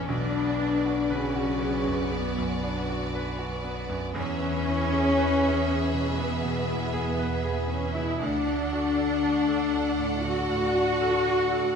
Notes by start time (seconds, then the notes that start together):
Already playing: E2 A2 E3 B3 E4 A4 B4
0.08 B1 B2 D4 F#4 B4 D5
0.33 B3
0.41 F#3
0.59 D4
0.76 B3
0.85 F#4
1.09 C#3 D3 C#4 B4
1.36 F#4
1.44 F#3
1.62 B3
1.78 F#4
1.87 F#2
2.12 B2 B3
2.38 F#2
2.46 F#3
2.63 D4
2.80 B3
2.90 F#4
3.15 D4 B4
3.39 F#4
3.48 F#3
3.64 B3
3.82 D4
3.89 F#2
4.15 E2 E3 C#4 G#4 B4 E5
4.41 B3
4.49 B3
4.67 E4
4.83 E4
4.93 G#4
5.17 G#4 B4
5.43 G#4
5.50 B3
5.68 B3
5.85 G#4
5.93 B2
6.18 E3 B3
6.44 B2
6.53 B3
6.69 E4
6.85 E4
6.93 G#4
7.19 G#4 B4
7.45 G#4
7.53 B3
7.70 B3 C#4
7.88 G#4
7.95 B2 E4
8.21 D2 D3 D4 A4 D5 F#5
8.47 D4
8.54 A3
8.73 F#4
8.98 A4
9.23 F#4 D5
9.48 A4
9.56 A3
9.75 D4
9.89 F#4
9.99 A2
10.22 D3 D4 F#4
10.49 A2
10.58 A3
10.75 F#4
10.93 D4
11.01 A4
11.26 D5
11.52 A4
11.61 A3